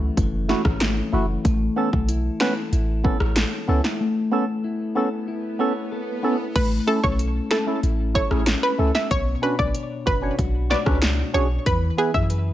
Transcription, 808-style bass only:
0.17 F#1
0.65 G#1
1.13 F#1
1.45 A1
1.93 B1
2.72 A1
3.20 A1
3.68 C#2
6.56 A1
7.04 B1
7.83 A1
8.31 A1
8.79 C#2
9.11 B1
9.59 B1
10.07 F#1
10.39 B1
10.86 C#2
11.34 B1
11.66 E2
12.14 F#2

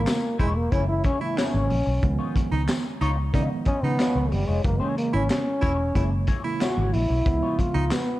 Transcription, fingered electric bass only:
0.39 E1
0.72 F#1
1.54 G#1
1.70 A#1
1.87 B1
2.03 C#2
2.52 C#2
3.01 C#2
3.34 C#3
3.66 muted fingered electric bass stroke
3.83 C#3
4.15 C#2
4.32 F#1
4.48 F1
4.65 F#1
5.14 G#1
5.63 E1
5.95 F#1
6.77 G#1
6.94 A#1
7.10 B1
7.26 C#2
7.75 C#2

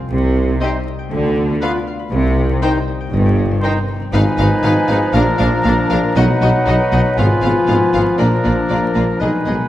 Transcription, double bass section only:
0.11 C2
1.12 D2
2.11 C2
3.13 G1
4.13 G#1
4.39 G#1
4.63 G#1
4.89 G#1
5.14 A#1
5.41 A#1
5.65 A#1
5.91 A#1
6.16 B1
6.42 B1
6.67 B1
6.92 B1
7.17 G#1
7.43 G#1
7.69 G#1
7.94 G#1
8.20 A#1
8.46 A#1
8.71 A#1
8.96 A#1
9.21 B1
9.46 B1

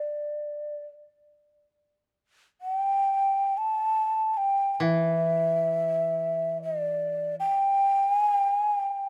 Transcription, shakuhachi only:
Already playing: D5
2.61 F#5
2.76 G5
3.57 A5
4.34 G5 A5
4.75 G5
4.83 E5
6.63 D#5
6.80 D5
7.39 G5
8.14 G#5
8.34 G5
8.56 G#5
8.76 G5

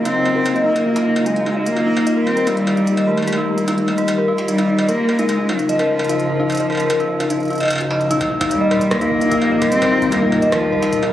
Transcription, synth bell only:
Already playing: D#4 A#4 D#5
0.05 D#4
0.25 D#5
0.36 A#4
0.56 D#5
0.66 D#4
0.86 D#4
0.96 D#4
1.16 D#4
1.26 F#4
1.36 D#4
1.46 D#4
1.56 D#5
1.77 D#4
1.87 D#4
2.07 D#5
2.17 A#4
2.37 A#4
2.47 D#4
2.67 D#4
2.77 D#4
2.97 D#5
3.07 A#4
3.27 A#4
3.38 D#4
3.58 D#4
3.68 D#4
3.88 D#5
3.98 A#4
4.18 A#4
4.28 D#4
4.48 D#4
4.58 D#4
4.79 D#5
4.89 A#4
5.09 A#4
5.19 D#4
5.39 D#4
5.49 D#4
5.69 D#5
5.79 A#4
5.99 A#4
6.09 D#4
6.30 D#4
6.40 D#4
6.60 D#5
6.70 A#4
6.90 A#4
7.00 D#4
7.20 D#4
7.30 D#4
7.50 D#4
7.60 D#5
7.81 F#4
7.91 D#5
8.11 D#4
8.31 D#4
8.41 D#4
8.61 D#5
8.71 A#4
8.91 A#4
9.01 D#4
9.21 D#4
9.31 D#4
9.52 D#5
9.62 A#4
9.82 A#4
9.92 D#4
10.12 D#4
10.22 D#4
10.42 D#5
10.52 A#4
10.72 A#4
10.82 D#4
11.03 D#4

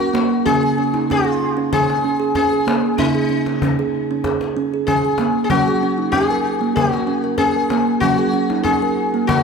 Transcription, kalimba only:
Already playing: F#3
0.00 A#4
0.14 A#3
0.46 C#3 C#4
0.63 G#4
0.78 C#4
0.94 D#4
1.10 C#4
1.25 G#4
1.57 C#4
1.73 G#4
2.04 C#4
2.20 G#4
2.36 C#4
2.52 G#4
2.67 A#3
2.98 C#3 C#4
3.15 G#4
3.30 C#4
3.47 D#4
3.63 C#4
3.79 G#4
4.11 C#4
4.25 G#4
4.57 C#4
4.74 G#4
4.88 C#4
5.05 G#4
5.19 A#3
5.50 F#3 C#4
5.68 G#4
5.83 C#4
5.98 D#4
6.14 C#4
6.31 A#4
6.61 A#3
6.76 A#4
7.07 C#4
7.24 A#4
7.39 C#4
7.56 A#4
7.72 A#3
8.03 F#3 C#4
8.18 G#4
8.34 C#4
8.50 D#4
8.66 C#4
8.82 A#4
9.14 A#3
9.29 A#4

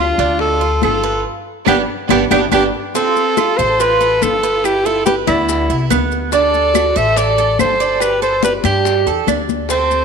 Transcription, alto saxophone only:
0.00 F4
0.40 A4
0.84 A4
1.68 G4
2.11 G4
2.31 G4
2.54 G4
2.96 A4
3.57 C5
3.80 B4
4.23 A4
4.65 G4
4.86 A4
5.06 G4
5.27 E4
6.34 D5
6.97 E5
7.17 D5
7.60 C5
8.01 B4
8.23 C5
8.44 B4
8.65 G4
9.70 C5

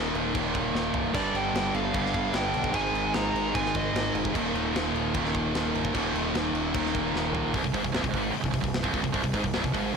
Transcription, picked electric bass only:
Already playing: D#1
0.14 D#1
0.35 D#1
0.55 D#1
0.73 D#1
0.93 C1
1.14 G1
1.33 G1
1.53 G1
1.74 G1
1.94 G1
2.14 G1
2.33 G1
2.54 B1
2.74 G#1
2.93 G#1
3.14 G#1
3.33 G#1
3.55 G#1
3.75 G#1
3.93 G#1
4.14 F1
4.35 D#1
4.54 D#1
4.73 D#1
4.92 D#1
5.14 D#1
5.35 D#1
5.55 D#1
5.74 C1
5.95 D#1
6.14 D#1
6.34 D#1
6.53 D#1
6.74 D#1
6.95 D#1
7.13 D#1
7.32 A#1
7.54 C1
7.64 C1
7.74 G#1
7.84 C1
7.94 C1
8.03 C1
8.14 G#1
8.34 muted picked electric bass stroke
8.44 C1
8.54 C1
8.63 C1
8.84 C1
8.93 C#1
9.04 C1
9.14 C1
9.24 C1
9.33 G#1
9.44 C1
9.55 C1
9.63 C1
9.74 G#1

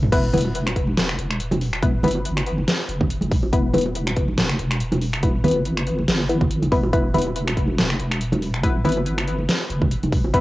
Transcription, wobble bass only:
Already playing: E1
0.12 E1
0.76 E1
1.19 E1
2.04 G1
2.89 F1
3.53 E1
4.17 E1
4.59 E1
5.44 G1
6.08 G1
6.72 E1
6.93 E1
7.57 E1
8.00 E1
8.85 G1
9.70 F1
10.34 E1

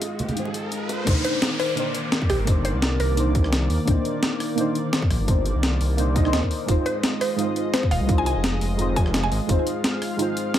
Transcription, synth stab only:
Already playing: G#3 D#4 F4 C5
0.34 G#3 D#4 F4
0.39 C5
1.04 A#3 D4 D#4
1.09 C5
1.75 A#3 D4 D#4
1.80 C5
2.45 A#3 D4 D#4
2.50 C5
3.15 A#3 D4 D#4
3.20 C5
3.85 A#3 D4 D#4
3.90 C5
4.55 A#3 D4 D#4
4.60 C5
5.25 A#3 D4 D#4
5.30 C5
5.97 A#3 D4 D#4 C5
6.14 A#3 D4 D#4 D#5
6.23 A#3 D4 D#4
6.28 C5
6.66 G#3 D#4 F4
6.71 C5
7.36 G#3 D#4 F4
7.41 C5
8.06 G#3 D#4 F4
8.11 C5
8.76 G#3 D#4 F4
8.81 C5
9.47 G#3 D#4 F4
9.52 C5
10.17 G#3 D#4 F4
10.22 C5

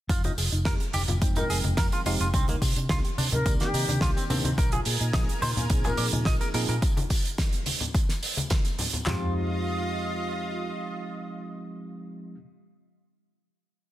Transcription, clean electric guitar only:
0.10 F4
0.25 D#4
0.66 A#4
0.94 G4
1.37 D#4
1.50 G#4
1.78 A#4
1.93 F4
2.06 F4
2.21 F4
2.34 C4
2.49 A#3
2.90 F4
3.18 D4
3.61 A#3
3.74 D#4
4.02 F4
4.17 C4
4.30 C4
4.45 C4
4.58 A#4
4.73 G#4
5.14 D#5
5.42 C5
5.85 G#4
5.98 D5
6.26 D#5
6.41 A#4
6.54 A#4
6.69 A#4
9.07 F4

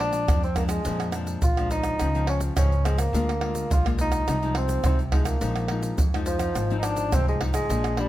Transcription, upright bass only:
Already playing: A#1
0.28 F2
0.86 F2
1.43 A#1
2.00 C#2
2.57 C#2
3.13 D2
3.70 B1
4.28 C2
4.84 C2
5.41 A#1
5.99 F2
6.55 G#1
7.13 C2
7.69 A#1

